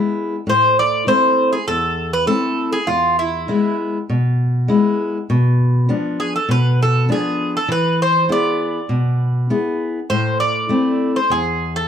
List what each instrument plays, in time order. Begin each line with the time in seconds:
Already playing: steel-string acoustic guitar G#3 B3 E4
0.47 steel-string acoustic guitar A2, bouzouki C5
0.79 bouzouki D5
1.07 steel-string acoustic guitar A3 C4 E4, bouzouki C5
1.53 bouzouki G#4
1.68 steel-string acoustic guitar E2, bouzouki A4
2.13 bouzouki B4
2.27 steel-string acoustic guitar A3 C4 E4, bouzouki A4
2.73 bouzouki G#4
2.87 steel-string acoustic guitar E2, bouzouki F4
3.19 bouzouki E4
3.48 steel-string acoustic guitar G#3 B3 E4
4.09 steel-string acoustic guitar B2
4.68 steel-string acoustic guitar G#3 B3 E4
5.30 steel-string acoustic guitar B2
5.89 steel-string acoustic guitar F3 B3 D4
6.20 bouzouki G#4
6.36 bouzouki A4
6.49 steel-string acoustic guitar B2, bouzouki B4
6.82 bouzouki A4
7.09 steel-string acoustic guitar F3 B3 D4, bouzouki G#4
7.57 bouzouki A4
7.68 steel-string acoustic guitar E3, bouzouki B4
8.02 bouzouki C5
8.29 steel-string acoustic guitar B3 E4 G#4, bouzouki D5
8.89 steel-string acoustic guitar B2
9.50 steel-string acoustic guitar B3 E4 G#4
10.10 steel-string acoustic guitar A2, bouzouki C5
10.40 bouzouki D5
10.69 steel-string acoustic guitar A3 C4 E4
11.16 bouzouki C5
11.30 steel-string acoustic guitar E2, bouzouki G#4
11.76 bouzouki A4